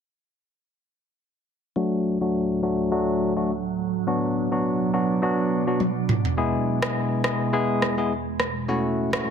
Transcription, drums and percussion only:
5.80 high tom
6.09 mid tom
6.25 floor tom
6.82 cross-stick
7.24 cross-stick
7.82 cross-stick
8.40 cross-stick
9.13 cross-stick

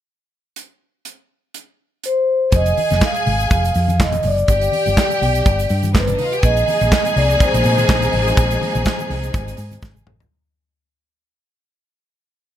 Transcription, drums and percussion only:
0.56 closed hi-hat
1.05 closed hi-hat
1.54 closed hi-hat
2.04 closed hi-hat
2.52 kick, closed hi-hat, shaker
2.66 closed hi-hat, muted conga, shaker
2.77 open hi-hat, high conga
2.90 snare, closed hi-hat, high conga, shaker
3.01 kick, snare, clap, shaker
3.14 closed hi-hat, shaker
3.26 open hi-hat, low conga
3.40 closed hi-hat, shaker
3.50 kick, closed hi-hat, muted conga, shaker
3.64 closed hi-hat, muted conga, shaker
3.74 open hi-hat, shaker
3.88 closed hi-hat, high conga, shaker
4.00 kick, snare, clap, shaker
4.12 closed hi-hat, muted conga, high conga, low conga, shaker
4.23 open hi-hat, low conga
4.38 closed hi-hat, shaker
4.48 kick, closed hi-hat, shaker
4.61 closed hi-hat, shaker
4.72 open hi-hat, high conga
4.86 closed hi-hat, high conga, shaker
4.97 kick, snare, clap, shaker
5.10 closed hi-hat, muted conga, shaker
5.21 open hi-hat, low conga
5.35 closed hi-hat, shaker
5.46 kick, closed hi-hat, muted conga, shaker
5.59 closed hi-hat, shaker
5.69 open hi-hat, shaker
5.83 closed hi-hat, high conga, shaker
5.95 kick, snare, clap, shaker
6.08 closed hi-hat, muted conga, high conga, low conga, shaker
6.18 open hi-hat, low conga
6.33 closed hi-hat, shaker
6.43 kick, closed hi-hat, muted conga, shaker
6.57 closed hi-hat, shaker
6.68 open hi-hat, high conga
6.81 closed hi-hat, high conga, shaker
6.92 kick, snare, clap, shaker
7.05 closed hi-hat, muted conga, shaker
7.17 open hi-hat, low conga
7.30 closed hi-hat, shaker
7.40 kick, closed hi-hat, muted conga, shaker
7.54 closed hi-hat, muted conga, shaker
7.63 open hi-hat, shaker
7.78 closed hi-hat, high conga, shaker
7.89 kick, snare, clap, shaker
8.02 closed hi-hat, muted conga, high conga, low conga, shaker
8.12 open hi-hat, low conga
8.27 closed hi-hat, shaker
8.37 kick, closed hi-hat, muted conga, shaker
8.51 closed hi-hat, shaker
8.61 open hi-hat, high conga
8.75 closed hi-hat, high conga, shaker
8.85 kick, snare, clap, shaker
8.99 closed hi-hat, muted conga, high conga, shaker
9.10 open hi-hat, low conga
9.23 closed hi-hat, shaker
9.34 kick, closed hi-hat, muted conga, shaker
9.48 closed hi-hat, muted conga, shaker
9.57 open hi-hat, shaker
9.71 closed hi-hat, high conga, shaker
9.82 kick, snare, shaker
9.95 muted conga, high conga, low conga, shaker
10.06 mid tom, low conga
10.20 floor tom, shaker

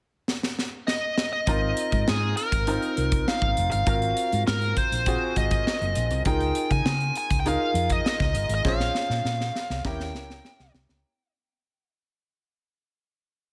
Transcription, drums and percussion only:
0.28 snare
0.43 snare
0.59 snare
0.88 snare
1.18 snare
1.47 kick, closed hi-hat
1.77 closed hi-hat
1.92 kick, closed hi-hat
2.08 snare
2.37 closed hi-hat
2.52 kick, closed hi-hat
2.67 closed hi-hat
2.82 closed hi-hat
2.97 closed hi-hat
3.12 kick, closed hi-hat
3.28 snare
3.42 kick
3.57 closed hi-hat
3.72 closed hi-hat
3.87 kick, closed hi-hat
4.02 closed hi-hat
4.17 closed hi-hat
4.32 closed hi-hat
4.47 snare
4.62 closed hi-hat
4.77 kick, closed hi-hat
4.92 closed hi-hat
5.06 kick, closed hi-hat
5.36 kick, closed hi-hat
5.51 kick, closed hi-hat
5.67 snare
5.82 closed hi-hat
5.95 closed hi-hat
6.11 closed hi-hat
6.25 kick, closed hi-hat
6.41 closed hi-hat
6.55 closed hi-hat
6.71 kick, closed hi-hat
6.86 snare
7.00 closed hi-hat
7.15 closed hi-hat
7.31 kick, closed hi-hat
7.46 closed hi-hat
7.75 closed hi-hat
7.90 kick, closed hi-hat
8.06 snare
8.20 kick, snare
8.35 closed hi-hat
8.49 closed hi-hat
8.65 kick, snare
8.80 snare
8.95 snare
9.10 snare
9.25 snare
9.41 snare
9.55 snare
9.70 snare
9.85 kick, snare
10.00 snare
10.15 snare
10.30 snare
10.45 snare
10.60 snare
10.75 snare
10.89 snare

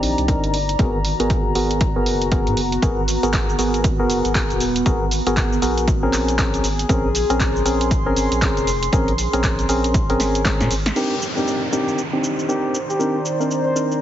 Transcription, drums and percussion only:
0.03 open hi-hat
0.18 closed hi-hat
0.28 kick, closed hi-hat
0.44 closed hi-hat
0.54 open hi-hat
0.69 closed hi-hat
0.79 kick, closed hi-hat
1.05 open hi-hat
1.20 closed hi-hat
1.30 kick, closed hi-hat
1.55 open hi-hat
1.71 closed hi-hat
1.81 kick, closed hi-hat
2.06 open hi-hat
2.22 closed hi-hat
2.32 kick, closed hi-hat
2.47 closed hi-hat
2.57 open hi-hat
2.72 closed hi-hat
2.82 kick, closed hi-hat, shaker
3.08 open hi-hat, shaker
3.23 closed hi-hat, shaker
3.33 kick, clap, closed hi-hat, shaker
3.49 shaker
3.59 open hi-hat, shaker
3.74 closed hi-hat, shaker
3.84 kick, closed hi-hat, shaker
4.10 open hi-hat, shaker
4.25 closed hi-hat, shaker
4.35 kick, clap, closed hi-hat, shaker
4.50 closed hi-hat, shaker
4.60 open hi-hat, shaker
4.76 closed hi-hat, shaker
4.86 kick, closed hi-hat, shaker
5.11 open hi-hat, shaker
5.27 closed hi-hat, shaker
5.37 kick, clap, closed hi-hat, shaker
5.53 shaker
5.62 open hi-hat, shaker
5.78 closed hi-hat, shaker
5.88 kick, closed hi-hat, shaker
6.13 clap, open hi-hat, shaker
6.28 closed hi-hat, shaker
6.38 kick, clap, closed hi-hat, shaker
6.54 closed hi-hat, shaker
6.64 open hi-hat, shaker
6.79 closed hi-hat, shaker
6.89 kick, closed hi-hat, shaker
7.15 open hi-hat, shaker
7.30 closed hi-hat, shaker
7.40 kick, clap, closed hi-hat, shaker
7.56 shaker
7.66 open hi-hat, shaker
7.81 closed hi-hat, shaker
7.91 kick, closed hi-hat, shaker
8.16 open hi-hat, shaker
8.32 closed hi-hat, shaker
8.42 kick, clap, closed hi-hat, shaker
8.57 closed hi-hat, shaker
8.67 open hi-hat, shaker
8.83 closed hi-hat, shaker
8.93 kick, closed hi-hat, shaker
9.08 closed hi-hat
9.18 open hi-hat, shaker
9.33 closed hi-hat, shaker
9.43 kick, clap, closed hi-hat, shaker
9.59 closed hi-hat, shaker
9.69 open hi-hat, shaker
9.84 closed hi-hat, shaker
9.94 kick, closed hi-hat, shaker
10.10 closed hi-hat
10.20 snare, open hi-hat, shaker
10.35 closed hi-hat, shaker
10.45 kick, snare, clap, closed hi-hat, shaker
10.61 snare, closed hi-hat, shaker
10.71 open hi-hat, shaker
10.86 snare, closed hi-hat, shaker
10.96 crash, shaker
11.22 shaker
11.38 shaker
11.48 shaker
11.73 shaker
11.88 shaker
11.98 shaker
12.24 shaker
12.39 shaker
12.49 shaker
12.75 shaker
12.90 shaker
13.00 shaker
13.26 shaker
13.41 shaker
13.51 shaker
13.76 shaker
13.92 shaker

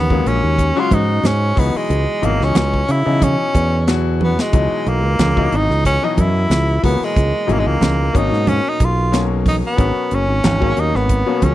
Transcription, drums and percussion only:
0.10 kick
0.26 closed hi-hat
0.58 kick, closed hi-hat, muted conga
0.91 kick, closed hi-hat, muted conga, high conga
1.24 snare, closed hi-hat, high conga
1.57 kick, open hi-hat
1.90 closed hi-hat, muted conga
2.23 closed hi-hat, low conga
2.41 snare
2.55 snare, closed hi-hat, muted conga, high conga
2.74 kick
2.89 closed hi-hat
3.22 kick, closed hi-hat, muted conga, high conga, low conga
3.55 kick, closed hi-hat
3.87 snare, closed hi-hat
4.21 high tom, high conga
4.39 snare
4.53 kick, closed hi-hat
4.86 closed hi-hat
5.19 snare, closed hi-hat, muted conga, high conga
5.37 kick
5.52 closed hi-hat
5.71 snare
5.85 kick, closed hi-hat, muted conga
6.17 kick, closed hi-hat, muted conga, high conga
6.50 snare, closed hi-hat, high conga
6.84 kick, open hi-hat
7.03 snare
7.16 kick, closed hi-hat, muted conga
7.48 closed hi-hat, low conga
7.81 snare, closed hi-hat, muted conga, high conga
8.15 kick, closed hi-hat
8.33 snare
8.47 closed hi-hat, muted conga, high conga, low conga
8.80 kick, closed hi-hat, muted conga
9.13 snare, closed hi-hat
9.46 kick, open hi-hat, high conga
9.78 kick, closed hi-hat
10.11 closed hi-hat
10.44 snare, closed hi-hat, muted conga, high conga
10.62 kick
10.77 closed hi-hat
10.95 snare
11.09 kick, closed hi-hat, muted conga
11.42 kick, closed hi-hat, muted conga, high conga

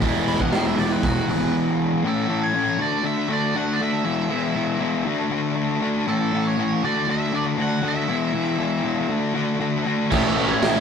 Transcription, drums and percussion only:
0.02 kick, open hi-hat
0.28 snare, open hi-hat
0.40 kick
0.52 snare, open hi-hat
0.78 open hi-hat
1.03 kick, open hi-hat
1.29 open hi-hat
10.12 kick, crash
10.62 snare, open hi-hat

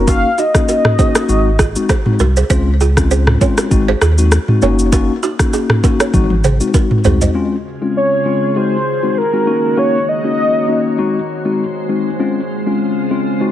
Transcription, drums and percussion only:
0.08 kick, shaker
0.38 shaker
0.55 kick, cross-stick, shaker
0.68 shaker
0.85 cross-stick, mid tom
0.99 kick, shaker
1.15 cross-stick, shaker
1.29 shaker
1.59 kick, cross-stick, shaker
1.76 shaker
1.89 kick, cross-stick, shaker
2.06 mid tom
2.19 shaker
2.36 shaker
2.50 kick, shaker
2.80 shaker
2.97 kick, cross-stick, shaker
3.11 shaker
3.27 cross-stick, mid tom
3.41 kick, shaker
3.58 cross-stick, shaker
3.71 kick, shaker
4.01 cross-stick, shaker
4.18 shaker
4.32 cross-stick, shaker
4.48 mid tom
4.62 shaker
4.79 shaker
4.92 kick, shaker
5.23 shaker
5.39 kick, cross-stick, shaker
5.53 shaker
5.69 cross-stick, mid tom
5.84 kick, shaker
6.00 cross-stick, shaker
6.14 kick, high tom, shaker
6.30 high tom
6.44 mid tom, shaker
6.60 shaker
6.74 kick, shaker
6.91 mid tom
7.04 floor tom, shaker
7.21 floor tom, shaker

